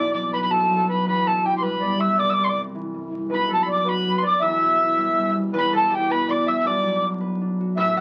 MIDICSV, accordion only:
0, 0, Header, 1, 2, 480
1, 0, Start_track
1, 0, Key_signature, 1, "minor"
1, 0, Tempo, 372671
1, 1369, Time_signature, 6, 3, 24, 8
1, 10310, End_track
2, 0, Start_track
2, 0, Title_t, "Accordion"
2, 0, Program_c, 0, 21
2, 0, Note_on_c, 0, 74, 85
2, 167, Note_off_c, 0, 74, 0
2, 186, Note_on_c, 0, 74, 75
2, 425, Note_off_c, 0, 74, 0
2, 427, Note_on_c, 0, 71, 68
2, 662, Note_off_c, 0, 71, 0
2, 667, Note_on_c, 0, 69, 70
2, 787, Note_off_c, 0, 69, 0
2, 806, Note_on_c, 0, 69, 55
2, 949, Note_off_c, 0, 69, 0
2, 968, Note_on_c, 0, 69, 68
2, 1135, Note_off_c, 0, 69, 0
2, 1138, Note_on_c, 0, 71, 70
2, 1354, Note_off_c, 0, 71, 0
2, 1373, Note_on_c, 0, 71, 77
2, 1616, Note_on_c, 0, 69, 63
2, 1631, Note_off_c, 0, 71, 0
2, 1836, Note_off_c, 0, 69, 0
2, 1860, Note_on_c, 0, 67, 58
2, 2080, Note_on_c, 0, 71, 66
2, 2098, Note_off_c, 0, 67, 0
2, 2320, Note_on_c, 0, 74, 65
2, 2345, Note_off_c, 0, 71, 0
2, 2547, Note_off_c, 0, 74, 0
2, 2570, Note_on_c, 0, 76, 73
2, 2789, Note_off_c, 0, 76, 0
2, 2804, Note_on_c, 0, 74, 83
2, 2981, Note_off_c, 0, 74, 0
2, 3001, Note_on_c, 0, 74, 66
2, 3178, Note_off_c, 0, 74, 0
2, 3198, Note_on_c, 0, 74, 64
2, 3351, Note_off_c, 0, 74, 0
2, 4249, Note_on_c, 0, 71, 87
2, 4481, Note_on_c, 0, 69, 64
2, 4510, Note_off_c, 0, 71, 0
2, 4723, Note_on_c, 0, 74, 72
2, 4732, Note_off_c, 0, 69, 0
2, 4946, Note_off_c, 0, 74, 0
2, 4953, Note_on_c, 0, 71, 70
2, 5441, Note_on_c, 0, 74, 87
2, 5462, Note_off_c, 0, 71, 0
2, 5663, Note_on_c, 0, 76, 90
2, 5665, Note_off_c, 0, 74, 0
2, 6832, Note_off_c, 0, 76, 0
2, 7121, Note_on_c, 0, 71, 83
2, 7378, Note_on_c, 0, 69, 71
2, 7387, Note_off_c, 0, 71, 0
2, 7621, Note_off_c, 0, 69, 0
2, 7630, Note_on_c, 0, 67, 60
2, 7861, Note_on_c, 0, 71, 73
2, 7864, Note_off_c, 0, 67, 0
2, 8097, Note_on_c, 0, 74, 80
2, 8117, Note_off_c, 0, 71, 0
2, 8325, Note_on_c, 0, 76, 92
2, 8342, Note_off_c, 0, 74, 0
2, 8573, Note_off_c, 0, 76, 0
2, 8577, Note_on_c, 0, 74, 82
2, 9082, Note_off_c, 0, 74, 0
2, 10001, Note_on_c, 0, 76, 97
2, 10310, Note_off_c, 0, 76, 0
2, 10310, End_track
0, 0, End_of_file